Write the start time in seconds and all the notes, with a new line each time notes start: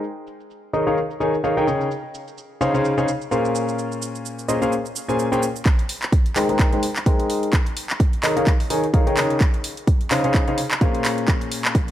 0.04 shaker
0.27 shaker
0.40 shaker
0.50 shaker
0.73 D#3 D#4 G#4 A#4 C#5 D#5, shaker
0.87 D#3 D#4 G#4 A#4 C#5 F5, shaker
0.97 shaker
1.11 shaker
1.20 D#3 D#4 G#4 A#4 C#5 G#5, shaker
1.34 shaker
1.44 D#3 D#4 G#4 A#4 C#5 F5, shaker
1.57 D#3 D#4 G#4 A#4 C#5 G5, shaker
1.67 C#3 D#4 G#4 A#4 C#5 G5, shaker
1.81 shaker
1.91 shaker
2.14 shaker
2.28 shaker
2.38 shaker
2.61 C#3 D#4 G#4 C5 C#5 F5, shaker
2.74 C#3 D#4 G#4 C5 C#5 F5, shaker
2.85 shaker
2.98 C#3 D#4 G#4 C5 C#5 F5, shaker
3.08 shaker
3.22 shaker
3.31 A#2 C#4 G#4 A#4 C5 F5, shaker
3.45 shaker
3.55 shaker
3.68 shaker
3.79 shaker
3.92 shaker
4.02 shaker
4.15 shaker
4.25 shaker
4.39 shaker
4.48 A#2 C#4 G#4 A#4 C5 D#5, shaker
4.62 A#2 C#4 G#4 A#4 C5 F5, shaker
4.72 shaker
4.86 shaker
4.96 shaker
5.08 A#2 C#4 G#4 A#4 C5 G#5, shaker
5.19 shaker
5.32 A#2 C#4 G#4 A#4 C5 G5, shaker
5.43 shaker
5.56 shaker
5.66 kick, clap, closed hi-hat
5.79 closed hi-hat
5.89 open hi-hat
6.02 clap, closed hi-hat
6.12 kick, closed hi-hat
6.26 closed hi-hat
6.36 G#3 D#4 G#4 A#4 C5 G5, clap, open hi-hat
6.49 G#3 D#4 G#4 A#4 C5 G5, closed hi-hat
6.59 kick, clap, closed hi-hat
6.73 G#3 D#4 G#4 A#4 C5 G5, closed hi-hat
6.83 open hi-hat
6.96 clap, closed hi-hat
7.06 G#3 D#4 G#4 A#4 C5 G5, kick, closed hi-hat
7.20 closed hi-hat
7.30 open hi-hat
7.43 closed hi-hat
7.53 kick, clap, closed hi-hat
7.66 closed hi-hat
7.77 open hi-hat
7.90 clap, closed hi-hat
8.00 kick, closed hi-hat
8.13 closed hi-hat
8.23 D#3 D#4 G#4 A#4 C#5 D#5, clap, open hi-hat
8.37 D#3 D#4 G#4 A#4 C#5 F5, closed hi-hat
8.47 kick, clap, closed hi-hat
8.60 open hi-hat
8.70 D#3 D#4 G#4 A#4 C#5 G#5, open hi-hat
8.84 closed hi-hat
8.94 D#3 D#4 G#4 A#4 C#5 F5, kick, closed hi-hat
9.07 D#3 D#4 G#4 A#4 C#5 G5, closed hi-hat
9.17 C#3 D#4 G#4 A#4 C#5 G5, clap, open hi-hat
9.30 closed hi-hat
9.41 kick, clap, closed hi-hat
9.54 closed hi-hat
9.64 open hi-hat
9.77 closed hi-hat
9.87 kick, closed hi-hat
10.01 closed hi-hat
10.11 C#3 D#4 G#4 C5 C#5 F5, clap, open hi-hat
10.24 C#3 D#4 G#4 C5 C#5 F5, closed hi-hat
10.34 kick, clap, closed hi-hat
10.48 C#3 D#4 G#4 C5 C#5 F5, closed hi-hat
10.58 open hi-hat
10.71 clap, closed hi-hat
10.81 A#2 C#4 G#4 A#4 C5 F5, kick, closed hi-hat
10.95 closed hi-hat
11.05 clap, open hi-hat
11.18 closed hi-hat
11.28 kick, clap, closed hi-hat
11.41 closed hi-hat
11.52 open hi-hat
11.65 clap, closed hi-hat
11.75 kick, closed hi-hat